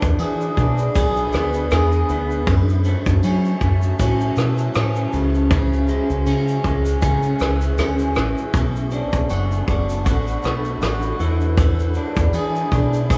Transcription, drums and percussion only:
0.02 kick loud
0.02 shaker medium
0.19 ride medium
0.19 tambourine medium
0.19 shaker medium
0.41 shaker medium
0.57 kick medium
0.57 ride soft
0.57 shaker soft
0.78 shaker medium
0.95 kick loud
0.95 ride medium
0.95 shaker medium
1.16 shaker soft
1.32 cross-stick medium
1.32 ride soft
1.32 shaker medium
1.54 shaker medium
1.71 cross-stick loud
1.71 ride medium
1.71 tambourine medium
1.71 shaker medium
1.92 shaker medium
2.09 ride soft
2.09 shaker medium
2.31 shaker soft
2.47 kick loud
2.47 ride medium
2.47 shaker medium
2.69 shaker medium
2.84 ride soft
2.84 shaker soft
3.06 kick loud
3.06 shaker medium
3.23 ride medium
3.23 tambourine medium
3.23 shaker medium
3.45 shaker medium
3.61 kick loud
3.61 ride soft
3.61 shaker soft
3.82 shaker medium
3.99 kick medium
3.99 ride medium
3.99 shaker medium
4.20 shaker medium
4.36 cross-stick medium
4.36 ride soft
4.36 shaker medium
4.58 shaker medium
4.75 cross-stick loud
4.75 ride medium
4.75 tambourine medium
4.75 shaker medium
4.96 shaker medium
5.13 ride soft
5.13 shaker soft
5.34 shaker soft
5.51 kick loud
5.51 ride medium
5.51 shaker medium
5.73 shaker soft
5.88 ride soft
5.88 shaker medium
6.10 shaker medium
6.26 ride medium
6.26 tambourine medium
6.26 shaker medium
6.48 shaker medium
6.64 kick medium
6.64 ride soft
6.64 shaker soft
6.85 shaker medium
7.02 kick loud
7.02 ride medium
7.02 shaker loud
7.23 shaker medium
7.39 cross-stick medium
7.39 ride soft
7.39 shaker medium
7.61 shaker medium
7.78 cross-stick medium
7.78 ride medium
7.78 tambourine medium
7.78 shaker medium
7.99 shaker medium
8.16 cross-stick medium
8.16 ride soft
8.16 shaker medium
8.38 shaker soft
8.54 kick loud
8.54 ride medium
8.54 shaker medium
8.76 shaker medium
8.91 ride soft
8.91 shaker soft
9.13 kick medium
9.13 shaker medium
9.30 ride medium
9.30 tambourine medium
9.30 shaker medium
9.51 shaker medium
9.68 kick medium
9.68 ride soft
9.68 shaker soft
9.89 shaker medium
10.06 kick loud
10.06 ride medium
10.06 shaker medium
10.27 shaker medium
10.43 cross-stick medium
10.43 ride medium
10.43 shaker medium
10.65 shaker medium
10.82 cross-stick loud
10.82 ride medium
10.82 tambourine medium
10.82 shaker medium
11.02 shaker medium
11.20 ride soft
11.20 shaker soft
11.41 shaker soft
11.57 kick loud
11.57 ride medium
11.57 shaker medium
11.79 shaker soft
11.94 ride soft
11.94 shaker medium
12.16 kick loud
12.16 shaker medium
12.33 ride medium
12.33 tambourine medium
12.33 shaker medium
12.55 shaker medium
12.72 kick medium
12.72 ride soft
12.72 shaker medium
12.93 shaker medium
13.10 kick loud
13.10 ride medium
13.10 shaker medium

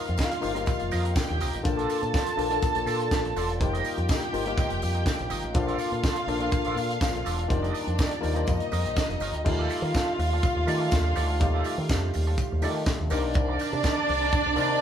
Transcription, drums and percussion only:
0.07 closed hi-hat soft
0.18 kick loud
0.18 snare loud
0.18 tambourine loud
0.32 closed hi-hat medium
0.42 open hi-hat medium
0.42 tambourine soft
0.56 closed hi-hat soft
0.66 kick loud
0.66 closed hi-hat medium
0.66 tambourine medium
0.80 closed hi-hat soft
0.91 open hi-hat medium
0.91 tambourine medium
1.05 closed hi-hat soft
1.16 kick loud
1.16 snare loud
1.16 tambourine loud
1.29 closed hi-hat soft
1.40 open hi-hat medium
1.40 tambourine medium
1.53 closed hi-hat soft
1.64 kick loud
1.64 closed hi-hat medium
1.64 tambourine soft
1.79 closed hi-hat soft
1.90 open hi-hat medium
1.90 tambourine medium
2.03 closed hi-hat soft
2.14 kick loud
2.14 snare loud
2.14 tambourine medium
2.26 closed hi-hat medium
2.39 open hi-hat medium
2.39 tambourine soft
2.51 closed hi-hat soft
2.62 kick loud
2.62 closed hi-hat medium
2.62 tambourine medium
2.75 closed hi-hat medium
2.87 open hi-hat medium
2.87 tambourine soft
3.00 closed hi-hat soft
3.11 kick loud
3.11 snare loud
3.11 tambourine medium
3.25 closed hi-hat soft
3.37 open hi-hat medium
3.37 tambourine medium
3.49 closed hi-hat soft
3.61 kick loud
3.61 closed hi-hat medium
3.75 closed hi-hat soft
3.84 open hi-hat medium
3.84 tambourine medium
3.98 closed hi-hat soft
4.09 kick loud
4.09 snare loud
4.09 tambourine medium
4.22 closed hi-hat medium
4.34 open hi-hat medium
4.34 tambourine soft
4.46 closed hi-hat medium
4.58 kick loud
4.58 closed hi-hat medium
4.58 tambourine medium
4.70 closed hi-hat medium
4.82 open hi-hat medium
4.82 tambourine medium
4.95 closed hi-hat soft
5.06 kick loud
5.06 snare loud
5.06 tambourine loud
5.19 closed hi-hat soft
5.30 open hi-hat medium
5.30 tambourine medium
5.42 closed hi-hat soft
5.54 kick loud
5.54 closed hi-hat medium
5.54 tambourine soft
5.68 closed hi-hat soft
5.79 open hi-hat medium
5.79 tambourine soft
5.92 closed hi-hat soft
6.03 kick loud
6.03 snare loud
6.03 tambourine loud
6.16 closed hi-hat medium
6.28 open hi-hat medium
6.40 closed hi-hat medium
6.52 kick loud
6.52 closed hi-hat medium
6.52 tambourine medium
6.65 closed hi-hat medium
6.77 open hi-hat medium
6.77 tambourine soft
6.91 closed hi-hat soft
7.01 kick loud
7.01 snare loud
7.01 tambourine loud
7.15 closed hi-hat soft
7.26 open hi-hat medium
7.26 tambourine medium
7.39 closed hi-hat soft
7.50 kick loud
7.50 closed hi-hat medium
7.64 closed hi-hat soft
7.75 open hi-hat medium
7.75 tambourine soft
7.88 closed hi-hat soft
7.98 kick loud
7.98 snare loud
7.98 tambourine loud
8.11 closed hi-hat medium
8.23 open hi-hat medium
8.23 tambourine soft
8.36 closed hi-hat soft
8.47 kick loud
8.47 closed hi-hat medium
8.47 tambourine medium
8.60 closed hi-hat medium
8.72 open hi-hat medium
8.72 tambourine soft
8.86 closed hi-hat medium
8.96 kick loud
8.96 snare loud
8.96 tambourine medium
9.10 closed hi-hat soft
9.20 open hi-hat medium
9.20 tambourine medium
9.34 closed hi-hat soft
9.45 kick loud
9.45 crash loud
9.45 tambourine soft
9.70 open hi-hat medium
9.70 tambourine medium
9.94 kick loud
9.94 snare loud
9.94 closed hi-hat medium
9.94 tambourine loud
10.20 open hi-hat medium
10.43 kick loud
10.43 closed hi-hat medium
10.43 tambourine medium
10.68 open hi-hat medium
10.68 tambourine medium
10.91 kick loud
10.91 snare loud
10.91 closed hi-hat medium
10.91 tambourine medium
11.16 open hi-hat medium
11.16 tambourine medium
11.40 kick loud
11.40 closed hi-hat medium
11.40 tambourine soft
11.64 open hi-hat medium
11.64 tambourine medium
11.89 kick loud
11.89 snare loud
11.89 closed hi-hat medium
11.89 tambourine loud
12.14 open hi-hat medium
12.14 tambourine soft
12.38 kick loud
12.38 closed hi-hat medium
12.38 tambourine medium
12.62 open hi-hat medium
12.62 tambourine medium
12.86 kick loud
12.86 snare loud
12.86 closed hi-hat medium
12.86 tambourine medium
13.10 open hi-hat medium
13.10 tambourine medium
13.34 kick loud
13.34 closed hi-hat medium
13.34 tambourine soft
13.59 open hi-hat medium
13.59 tambourine medium
13.83 kick loud
13.83 snare loud
13.83 closed hi-hat soft
13.83 tambourine medium
14.09 open hi-hat medium
14.32 kick loud
14.32 tambourine medium
14.56 open hi-hat medium
14.56 tambourine medium

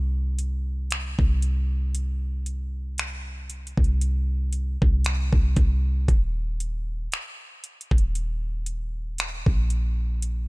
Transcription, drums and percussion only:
0.39 closed hi-hat medium
0.91 finger snap loud
0.91 closed hi-hat medium
1.19 kick medium
1.42 closed hi-hat medium
1.95 closed hi-hat medium
2.46 closed hi-hat medium
2.98 finger snap medium
2.98 closed hi-hat medium
3.50 closed hi-hat medium
3.67 closed hi-hat soft
3.77 kick medium
3.84 closed hi-hat soft
4.01 closed hi-hat medium
4.53 closed hi-hat medium
4.82 kick medium
5.04 finger snap loud
5.04 closed hi-hat medium
5.33 kick medium
5.56 kick medium
5.56 closed hi-hat medium
6.08 kick loud
6.08 closed hi-hat medium
6.60 closed hi-hat medium
7.12 finger snap loud
7.12 closed hi-hat medium
7.64 closed hi-hat medium
7.81 closed hi-hat soft
7.91 kick medium
7.98 closed hi-hat soft
8.15 closed hi-hat medium
8.66 closed hi-hat medium
9.18 finger snap loud
9.18 closed hi-hat medium
9.46 kick medium
9.70 closed hi-hat medium
10.22 closed hi-hat medium

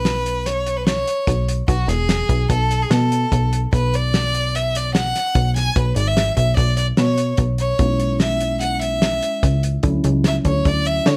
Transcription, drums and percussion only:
0.05 snare medium
0.05 closed hi-hat medium
0.26 closed hi-hat medium
0.46 snare soft
0.46 closed hi-hat medium
0.66 closed hi-hat medium
0.87 snare medium
0.87 closed hi-hat medium
1.07 closed hi-hat medium
1.27 kick loud
1.27 snare soft
1.27 closed hi-hat medium
1.48 closed hi-hat medium
1.68 kick loud
1.68 closed hi-hat medium
1.89 snare soft
1.89 closed hi-hat medium
2.09 snare loud
2.09 closed hi-hat medium
2.29 kick medium
2.29 closed hi-hat medium
2.50 kick medium
2.50 closed hi-hat medium
2.71 closed hi-hat medium
2.91 snare loud
2.91 closed hi-hat medium
3.12 closed hi-hat medium
3.32 kick medium
3.32 closed hi-hat medium
3.53 closed hi-hat medium
3.73 kick loud
3.73 closed hi-hat medium
3.94 closed hi-hat medium
4.14 snare medium
4.14 closed hi-hat medium
4.35 closed hi-hat medium
4.55 closed hi-hat medium
4.75 closed hi-hat medium
4.95 snare loud
4.95 closed hi-hat medium
5.16 snare soft
5.16 closed hi-hat medium
5.35 kick medium
5.35 closed hi-hat medium
5.56 snare soft
5.56 closed hi-hat medium
5.76 kick loud
5.76 closed hi-hat medium
5.96 closed hi-hat medium
6.17 snare loud
6.17 closed hi-hat medium
6.37 kick medium
6.37 closed hi-hat medium
6.57 kick medium
6.57 closed hi-hat medium
6.77 closed hi-hat medium
6.97 snare loud
6.97 closed hi-hat medium
7.18 closed hi-hat medium
7.37 kick loud
7.37 closed hi-hat medium
7.58 closed hi-hat medium
7.79 kick medium
7.79 closed hi-hat medium
8.00 closed hi-hat soft
8.20 snare medium
8.20 closed hi-hat medium
8.40 closed hi-hat medium
8.61 closed hi-hat medium
8.81 closed hi-hat medium
9.02 snare loud
9.02 closed hi-hat medium
9.22 closed hi-hat medium
9.43 kick loud
9.43 snare soft
9.43 closed hi-hat medium
9.63 closed hi-hat medium
9.83 kick medium
9.83 closed hi-hat medium
10.04 closed hi-hat medium
10.24 snare medium
10.24 closed hi-hat medium
10.45 kick medium
10.45 closed hi-hat medium
10.65 kick medium
10.65 closed hi-hat medium
10.85 closed hi-hat medium
11.06 snare loud
11.06 closed hi-hat medium

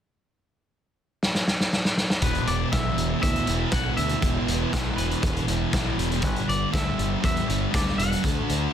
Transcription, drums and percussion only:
1.23 snare medium
1.35 snare medium
1.48 snare medium
1.60 snare medium
1.73 snare medium
1.85 snare loud
1.97 snare loud
2.10 snare loud
2.22 kick loud
2.22 closed hi-hat loud
2.35 closed hi-hat soft
2.47 closed hi-hat medium
2.72 kick loud
2.72 snare loud
2.72 closed hi-hat loud
2.98 closed hi-hat medium
3.23 kick loud
3.23 closed hi-hat loud
3.36 closed hi-hat medium
3.47 closed hi-hat medium
3.71 kick loud
3.71 snare loud
3.71 closed hi-hat loud
3.97 closed hi-hat medium
4.09 closed hi-hat soft
4.22 kick loud
4.22 closed hi-hat medium
4.48 closed hi-hat medium
4.73 kick loud
4.73 snare loud
4.73 closed hi-hat loud
4.98 closed hi-hat medium
5.11 closed hi-hat soft
5.23 kick loud
5.23 closed hi-hat medium
5.36 closed hi-hat soft
5.48 closed hi-hat medium
5.73 kick loud
5.73 snare loud
5.73 closed hi-hat loud
5.99 closed hi-hat medium
6.11 closed hi-hat soft
6.22 kick loud
6.22 closed hi-hat loud
6.36 closed hi-hat soft
6.49 closed hi-hat medium
6.74 kick loud
6.74 snare loud
6.74 closed hi-hat loud
6.99 closed hi-hat medium
7.24 kick loud
7.24 closed hi-hat loud
7.37 closed hi-hat medium
7.50 closed hi-hat medium
7.74 kick loud
7.74 snare loud
7.74 closed hi-hat loud
7.88 snare soft
7.99 closed hi-hat medium
8.12 closed hi-hat medium
8.24 kick loud
8.24 closed hi-hat loud
8.49 closed hi-hat medium

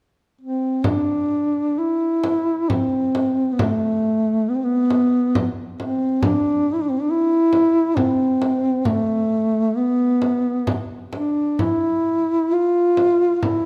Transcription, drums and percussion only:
0.84 frame drum medium
2.24 frame drum medium
2.70 frame drum medium
3.15 frame drum soft
3.59 frame drum medium
4.90 frame drum soft
5.35 frame drum medium
5.80 frame drum soft
6.23 frame drum medium
7.53 frame drum medium
7.97 frame drum medium
8.42 frame drum soft
8.85 frame drum medium
10.22 frame drum soft
10.67 frame drum medium
11.13 frame drum soft
11.59 frame drum medium
12.97 frame drum soft
13.43 frame drum medium

